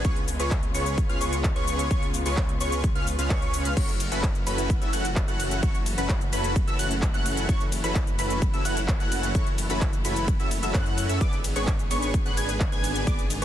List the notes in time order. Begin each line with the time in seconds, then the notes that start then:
0.05 C#2 C#3 B3 C#4 F4 G#4 B4 C#5 C#6, kick, closed hi-hat, shaker
0.16 closed hi-hat
0.28 open hi-hat, shaker
0.40 C#2 C#4 F4 G#4 B4 C#5 C#6, closed hi-hat, shaker
0.51 kick, clap, closed hi-hat, shaker
0.63 closed hi-hat
0.74 C#2 C#4 F4 G#4 B4 C#5 C#6, open hi-hat, shaker
0.86 closed hi-hat, shaker
0.98 kick, closed hi-hat, shaker
1.09 C#2 C#4 F4 G#4 B4 F5 F6, closed hi-hat
1.21 C#2 C#4 F4 G#4 B4 C#5 C#6, open hi-hat, shaker
1.33 closed hi-hat, shaker
1.44 kick, clap, closed hi-hat, shaker
1.56 C#2 C#4 F4 G#4 B4 C#5 C#6, closed hi-hat
1.68 open hi-hat, shaker
1.79 closed hi-hat, shaker
1.91 C#2 C#4 F4 G#4 B4 C#5 C#6, kick, closed hi-hat, shaker
2.02 closed hi-hat
2.14 open hi-hat, shaker
2.26 C#2 C#4 F4 G#4 B4 C#5 C#6, open hi-hat, shaker
2.37 kick, clap, closed hi-hat, shaker
2.49 closed hi-hat
2.61 C#2 C#4 F4 G#4 B4 C#5 C#6, open hi-hat, shaker
2.72 closed hi-hat, shaker
2.84 kick, closed hi-hat, shaker
2.95 C#2 C#4 F4 G#4 B4 F5 F6, closed hi-hat
3.07 open hi-hat, shaker
3.19 C#2 C#4 F4 G#4 B4 F5 F6, closed hi-hat, shaker
3.30 C#2 C#4 F4 G#4 B4 C#5 C#6, kick, clap, closed hi-hat, shaker
3.42 closed hi-hat
3.54 open hi-hat, shaker
3.65 C#2 C#4 F4 G#4 B4 F5 F6, closed hi-hat, shaker
3.77 F#1 E3 A3 C#4 E4 F#4 A4 C#5 C#6, kick, closed hi-hat, crash, shaker
3.89 closed hi-hat, shaker
4.00 open hi-hat, ride, shaker
4.12 F#1 C#4 E4 F#4 A4 B4 B5, closed hi-hat, shaker
4.23 kick, clap, closed hi-hat, shaker
4.35 closed hi-hat, shaker
4.47 F#1 C#4 E4 F#4 A4 B4 B5, open hi-hat, ride, shaker
4.58 closed hi-hat, shaker
4.70 kick, closed hi-hat, shaker
4.81 F#1 C#4 E4 F#4 A4 E5 E6, closed hi-hat, shaker
4.93 F#1 C#4 E4 F#4 A4 F#5 F#6, open hi-hat, ride, shaker
5.05 closed hi-hat, shaker
5.16 kick, clap, closed hi-hat, shaker
5.28 F#1 C#4 E4 F#4 A4 F#5 F#6, closed hi-hat, shaker
5.40 open hi-hat, ride, shaker
5.51 closed hi-hat, shaker
5.63 F#1 C#4 E4 F#4 A4 C#5 C#6, kick, closed hi-hat, shaker
5.75 closed hi-hat, shaker
5.86 open hi-hat, ride, shaker
5.98 F#1 C#4 E4 F#4 A4 B4 B5, closed hi-hat, shaker
6.09 kick, clap, closed hi-hat, shaker
6.21 closed hi-hat, shaker
6.33 F#1 C#4 E4 F#4 A4 B4 B5, open hi-hat, ride, shaker
6.44 closed hi-hat, shaker
6.56 kick, closed hi-hat, shaker
6.67 F#1 C#4 E4 F#4 A4 E5 E6, closed hi-hat, shaker
6.79 F#1 C#4 E4 F#4 A4 F#5 F#6, open hi-hat, ride, shaker
6.91 closed hi-hat, shaker
7.02 kick, clap, closed hi-hat, shaker
7.14 F#1 C#4 E4 F#4 A4 F#5 F#6, closed hi-hat, shaker
7.26 open hi-hat, ride, shaker
7.37 closed hi-hat, shaker
7.49 F#1 C#4 E4 F#4 A4 C#5 C#6, kick, closed hi-hat, shaker
7.61 closed hi-hat, shaker
7.72 open hi-hat, ride, shaker
7.84 F#1 C#4 E4 F#4 A4 B4 B5, closed hi-hat, shaker
7.95 kick, clap, closed hi-hat, shaker
8.07 closed hi-hat, shaker
8.19 F#1 C#4 E4 F#4 A4 B4 B5, open hi-hat, ride, shaker
8.30 closed hi-hat, shaker
8.42 kick, closed hi-hat, shaker
8.54 F#1 C#4 E4 F#4 A4 E5 E6, closed hi-hat, shaker
8.65 F#1 C#4 E4 F#4 A4 F#5 F#6, open hi-hat, ride, shaker
8.77 closed hi-hat, shaker
8.88 kick, clap, closed hi-hat, shaker
9.00 F#1 C#4 E4 F#4 A4 F#5 F#6, closed hi-hat, shaker
9.12 open hi-hat, ride, shaker
9.23 closed hi-hat, shaker
9.35 F#1 C#4 E4 F#4 A4 C#5 C#6, kick, closed hi-hat, shaker
9.47 closed hi-hat, shaker
9.58 open hi-hat, ride, shaker
9.70 F#1 C#4 E4 F#4 A4 B4 B5, closed hi-hat, shaker
9.81 kick, clap, closed hi-hat, shaker
9.93 closed hi-hat, shaker
10.05 F#1 C#4 E4 F#4 A4 B4 B5, open hi-hat, ride, shaker
10.16 closed hi-hat, shaker
10.28 kick, closed hi-hat, shaker
10.40 F#1 C#4 E4 F#4 A4 E5 E6, closed hi-hat, shaker
10.51 open hi-hat, ride, shaker
10.63 F#1 C#4 E4 F#4 A4 E5 E6, closed hi-hat, shaker
10.74 F#2 C#4 E4 F#4 A4 F#5 F#6, kick, clap, closed hi-hat, shaker
10.86 closed hi-hat, shaker
10.98 open hi-hat, ride, shaker
11.09 F#2 C#4 E4 F#4 A4 E5 E6, closed hi-hat, shaker
11.21 G#1 D3 B3 D4 G#4 B4 D5 D6, kick, closed hi-hat, shaker
11.33 closed hi-hat, shaker
11.44 open hi-hat, ride, shaker
11.56 G#1 B3 D4 G#4 B4 C#5 C#6, closed hi-hat, shaker
11.67 kick, clap, closed hi-hat, shaker
11.79 closed hi-hat, shaker
11.91 G#1 B3 D4 G#4 B4 C#5 C#6, open hi-hat, ride, shaker
12.02 closed hi-hat, shaker
12.14 kick, closed hi-hat, shaker
12.26 G#1 B3 D4 G#4 B4 F#5 F#6, closed hi-hat, shaker
12.37 G#1 B3 D4 G#4 B4 G#5 G#6, open hi-hat, ride, shaker
12.49 closed hi-hat, shaker
12.60 kick, clap, closed hi-hat, shaker
12.72 G#1 B3 D4 G#4 B4 G#5 G#6, closed hi-hat, shaker
12.84 open hi-hat, ride, shaker
12.95 closed hi-hat, shaker
13.07 G#1 B3 D4 G#4 B4 D5 D6, kick, closed hi-hat, shaker
13.19 closed hi-hat, shaker
13.30 open hi-hat, ride, shaker
13.42 G#1